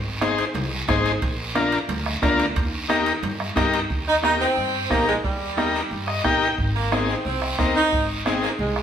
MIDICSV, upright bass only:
0, 0, Header, 1, 2, 480
1, 0, Start_track
1, 0, Key_signature, -3, "major"
1, 0, Tempo, 335383
1, 1746, Time_signature, 4, 2, 24, 8
1, 12630, End_track
2, 0, Start_track
2, 0, Title_t, "Upright bass"
2, 0, Program_c, 0, 32
2, 0, Note_on_c, 0, 32, 96
2, 596, Note_off_c, 0, 32, 0
2, 776, Note_on_c, 0, 36, 104
2, 1164, Note_off_c, 0, 36, 0
2, 1266, Note_on_c, 0, 32, 100
2, 1649, Note_off_c, 0, 32, 0
2, 1750, Note_on_c, 0, 34, 107
2, 2515, Note_off_c, 0, 34, 0
2, 2703, Note_on_c, 0, 38, 92
2, 3087, Note_off_c, 0, 38, 0
2, 3183, Note_on_c, 0, 38, 95
2, 3567, Note_off_c, 0, 38, 0
2, 3664, Note_on_c, 0, 39, 103
2, 4431, Note_off_c, 0, 39, 0
2, 4618, Note_on_c, 0, 43, 85
2, 5003, Note_off_c, 0, 43, 0
2, 5104, Note_on_c, 0, 43, 90
2, 5487, Note_off_c, 0, 43, 0
2, 5586, Note_on_c, 0, 39, 84
2, 6352, Note_off_c, 0, 39, 0
2, 6545, Note_on_c, 0, 43, 83
2, 6928, Note_off_c, 0, 43, 0
2, 7023, Note_on_c, 0, 34, 91
2, 7407, Note_off_c, 0, 34, 0
2, 7505, Note_on_c, 0, 39, 84
2, 8272, Note_off_c, 0, 39, 0
2, 8459, Note_on_c, 0, 43, 91
2, 8844, Note_off_c, 0, 43, 0
2, 8937, Note_on_c, 0, 34, 86
2, 9324, Note_off_c, 0, 34, 0
2, 9422, Note_on_c, 0, 32, 86
2, 10191, Note_off_c, 0, 32, 0
2, 10377, Note_on_c, 0, 36, 96
2, 10764, Note_off_c, 0, 36, 0
2, 10865, Note_on_c, 0, 39, 82
2, 11249, Note_off_c, 0, 39, 0
2, 11344, Note_on_c, 0, 32, 77
2, 12113, Note_off_c, 0, 32, 0
2, 12293, Note_on_c, 0, 36, 97
2, 12630, Note_off_c, 0, 36, 0
2, 12630, End_track
0, 0, End_of_file